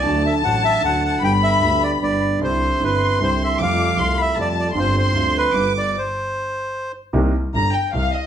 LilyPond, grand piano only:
\new Staff \with { instrumentName = "Grand piano" } { \clef bass \time 3/4 \key g \mixolydian \tempo 4 = 152 <d, d fis a fis'>4 <a,, a, d fis a fis'>4 <d, d fis a fis'>4 | <g,, g, d g b g'>4 <d, d g b g'>4 <g,, g, d g b g'>4 | <c, c d g c' e'>4 <g,, g, d g c' e'>4 <c, c d g c' e'>4 | <f, c f g a f'>4 <c, c g a f'>4 <f, c f g a f'>4 |
<g,, g, d g c' f'>4 <d, d g c' f'>4 <g,, g, d g b f'>4 | r2. | \key c \minor <c, c ees bes c' g'>8 r8 <g,, g,>8 r8 <c, c>8 r8 | }